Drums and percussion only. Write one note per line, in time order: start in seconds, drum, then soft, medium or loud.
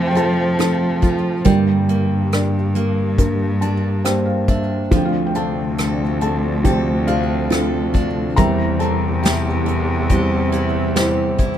0.16 closed hi-hat soft
0.59 cross-stick medium
0.59 closed hi-hat medium
1.03 kick medium
1.03 closed hi-hat soft
1.45 kick medium
1.45 closed hi-hat medium
1.89 closed hi-hat soft
2.32 cross-stick medium
2.32 closed hi-hat medium
2.75 closed hi-hat soft
3.18 kick medium
3.18 closed hi-hat medium
3.62 closed hi-hat soft
4.05 cross-stick medium
4.05 closed hi-hat medium
4.48 kick medium
4.48 closed hi-hat soft
4.91 kick medium
4.91 closed hi-hat medium
5.35 closed hi-hat soft
5.78 cross-stick medium
5.78 closed hi-hat medium
6.21 closed hi-hat soft
6.65 kick medium
6.65 closed hi-hat medium
7.08 closed hi-hat soft
7.52 cross-stick medium
7.52 closed hi-hat medium
7.95 kick medium
7.95 closed hi-hat soft
8.38 kick medium
8.38 closed hi-hat medium
8.81 closed hi-hat soft
9.25 snare medium
9.25 closed hi-hat medium
9.68 closed hi-hat soft
10.10 kick medium
10.10 closed hi-hat medium
10.53 closed hi-hat soft
10.96 snare medium
10.96 closed hi-hat medium
11.39 kick medium
11.39 closed hi-hat soft